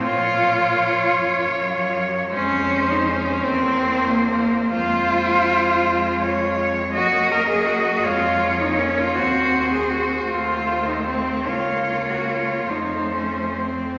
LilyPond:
<<
  \new Staff \with { instrumentName = "Cello" } { \time 6/8 \key bes \minor \tempo 4. = 53 des''2. | c''4. c''4. | c''2 des''4 | ees''4. des''4. |
c''4. c''4. | des''4. c''4. | }
  \new Staff \with { instrumentName = "Cello" } { \time 6/8 \key bes \minor f'2~ f'8 r8 | des'8. ees'16 des'8 c'8. bes16 bes8 | f'2~ f'8 r8 | ges'8 bes'16 aes'16 ges'8 f'8. ees'16 des'16 f'16 |
ges'8. aes'16 ges'8 f'8. ees'16 c'8 | f'8. ges'16 f'8 ees'8 des'8 c'8 | }
  \new Staff \with { instrumentName = "Cello" } { \time 6/8 \key bes \minor f2 ges4 | aes4. bes4. | aes2. | bes4. aes8. bes8. |
c'4. a4. | bes4. a4. | }
  \new Staff \with { instrumentName = "Cello" } { \clef bass \time 6/8 \key bes \minor bes,4. ges,4. | f,4. e,4. | f,2. | ges,4. f,4. |
ees,4. ees,4. | des,4. f,4. | }
>>